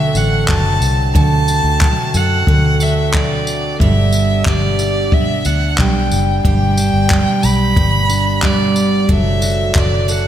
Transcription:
0.00 0.12 D2 loud
0.00 1.15 D3 medium
0.00 3.75 D3 medium
0.00 0.47 F#3 medium
0.00 3.75 A3 medium
0.00 3.75 C4 medium
0.00 0.16 D4 medium
0.00 3.75 F#4 medium
0.00 1.15 A4 medium
0.00 0.18 E5 loud
0.15 0.46 A1 medium
0.15 1.48 D4 medium
0.15 0.49 F#5 loud
0.15 tambourine medium
0.48 0.79 F#1 loud
0.48 1.80 F#3 medium
0.48 1.11 A5 loud
0.48 kick loud
0.48 clap loud
0.81 1.12 C2 medium
0.81 tambourine medium
1.15 1.60 D2 loud
1.15 2.48 D3 medium
1.15 2.13 A4 medium
1.15 2.18 A5 loud
1.15 kick loud
1.48 2.81 D4 medium
1.48 tambourine medium
1.64 1.95 D2 medium
1.81 3.13 F#3 medium
1.81 kick loud
1.81 clap loud
2.14 2.45 F#2 medium
2.14 3.80 A4 medium
2.14 2.84 F#5 loud
2.14 tambourine medium
2.47 3.76 D2 loud
2.47 5.98 D3 medium
2.47 kick loud
2.80 4.13 D4 medium
2.80 3.17 E5 loud
2.80 tambourine medium
3.14 3.87 F#3 medium
3.14 3.81 D5 medium
3.14 kick loud
3.14 clap loud
3.47 tambourine medium
3.79 4.42 G1 loud
3.79 5.13 G2 medium
3.79 9.05 G3 medium
3.79 9.05 B3 medium
3.79 9.05 D4 medium
3.79 4.78 G4 medium
3.79 4.50 E5 loud
3.79 kick loud
4.13 5.46 D4 medium
4.13 tambourine medium
4.45 5.42 G1 loud
4.45 5.79 G3 medium
4.45 5.16 D5 medium
4.45 kick loud
4.45 clap loud
4.79 6.44 G4 medium
4.79 tambourine medium
5.12 5.47 E5 medium
5.12 kick loud
5.45 5.76 D2 medium
5.45 6.79 D4 medium
5.45 5.81 F#5 medium
5.45 tambourine medium
5.78 6.09 B1 medium
5.78 7.10 G3 medium
5.78 6.45 G5 loud
5.78 kick loud
5.78 clap loud
6.12 6.42 F#1 medium
6.12 tambourine medium
6.45 6.90 G1 loud
6.45 7.76 G2 medium
6.45 7.43 G4 medium
6.45 7.47 G5 loud
6.45 kick loud
6.77 8.09 D4 medium
6.77 tambourine medium
6.94 7.24 G1 medium
7.10 8.42 G3 medium
7.10 kick loud
7.10 clap loud
7.43 7.74 B1 medium
7.43 9.09 G4 medium
7.43 8.46 B5 loud
7.43 tambourine medium
7.76 9.05 G1 loud
7.76 9.16 G2 medium
7.76 kick loud
8.09 9.41 D4 medium
8.09 tambourine medium
8.42 9.08 G3 medium
8.42 9.13 D5 medium
8.42 kick loud
8.42 clap loud
8.76 tambourine medium
9.09 9.71 F#1 loud
9.09 10.28 F#3 medium
9.09 10.28 A3 medium
9.09 10.28 D4 medium
9.09 10.07 A4 medium
9.09 9.80 E5 loud
9.09 kick loud
9.42 10.28 F#4 medium
9.42 tambourine medium
9.74 10.28 F#1 loud
9.74 10.28 D4 medium
9.74 kick loud
9.74 clap loud
9.79 10.12 D5 medium
10.08 10.28 A4 medium
10.08 10.28 F#5 loud
10.08 tambourine medium

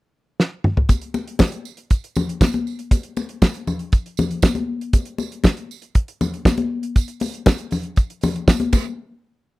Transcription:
0.40 snare medium
0.64 mid tom medium
0.77 floor tom medium
0.89 kick medium
0.89 closed hi-hat medium
0.89 tambourine soft
0.89 muted conga soft
1.01 closed hi-hat soft
1.14 tambourine soft
1.14 muted conga medium
1.28 closed hi-hat soft
1.39 kick loud
1.39 snare loud
1.39 tambourine medium
1.39 high conga medium
1.52 closed hi-hat soft
1.65 tambourine medium
1.77 closed hi-hat soft
1.90 kick medium
1.90 closed hi-hat medium
1.90 tambourine soft
2.04 closed hi-hat soft
2.16 tambourine medium
2.16 muted conga soft
2.16 low conga medium
2.29 closed hi-hat soft
2.41 kick loud
2.41 snare loud
2.41 tambourine medium
2.41 high conga medium
2.53 closed hi-hat soft
2.53 high conga medium
2.67 tambourine soft
2.79 closed hi-hat soft
2.91 kick loud
2.91 closed hi-hat medium
2.91 tambourine soft
2.91 muted conga soft
3.03 closed hi-hat soft
3.17 tambourine soft
3.17 muted conga soft
3.29 closed hi-hat soft
3.42 kick medium
3.42 snare loud
3.42 tambourine medium
3.42 high conga medium
3.54 closed hi-hat soft
3.67 tambourine soft
3.67 low conga medium
3.79 closed hi-hat soft
3.92 kick medium
3.92 closed hi-hat soft
3.92 tambourine soft
4.06 closed hi-hat soft
4.17 tambourine medium
4.17 muted conga soft
4.17 low conga medium
4.31 closed hi-hat soft
4.42 kick loud
4.42 snare loud
4.42 tambourine medium
4.42 high conga medium
4.55 closed hi-hat soft
4.55 high conga medium
4.81 closed hi-hat soft
4.93 kick loud
4.93 closed hi-hat medium
4.93 tambourine soft
4.93 muted conga soft
5.05 closed hi-hat soft
5.18 tambourine soft
5.18 muted conga soft
5.32 closed hi-hat soft
5.44 kick medium
5.44 snare loud
5.44 tambourine medium
5.44 high conga medium
5.57 closed hi-hat soft
5.71 tambourine soft
5.82 closed hi-hat soft
5.95 kick medium
5.95 closed hi-hat medium
6.08 closed hi-hat soft
6.21 tambourine soft
6.21 muted conga soft
6.21 low conga medium
6.34 closed hi-hat soft
6.45 kick loud
6.45 snare loud
6.45 tambourine loud
6.45 high conga medium
6.57 closed hi-hat soft
6.57 high conga medium
6.83 closed hi-hat soft
6.96 kick medium
6.96 closed hi-hat medium
6.96 tambourine medium
7.08 closed hi-hat soft
7.20 open hi-hat medium
7.20 tambourine soft
7.20 muted conga medium
7.34 closed hi-hat soft
7.46 kick loud
7.46 snare loud
7.46 tambourine medium
7.46 high conga medium
7.58 closed hi-hat soft
7.71 open hi-hat medium
7.71 tambourine soft
7.71 low conga medium
7.83 closed hi-hat soft
7.96 kick medium
7.96 closed hi-hat medium
7.96 tambourine soft
8.10 closed hi-hat soft
8.21 open hi-hat soft
8.21 tambourine medium
8.21 muted conga soft
8.21 low conga medium
8.36 closed hi-hat soft
8.48 kick loud
8.48 snare loud
8.48 tambourine medium
8.48 high conga medium
8.60 closed hi-hat medium
8.60 high conga medium
8.72 kick loud
8.72 crash medium
8.72 tambourine medium
8.72 muted conga medium

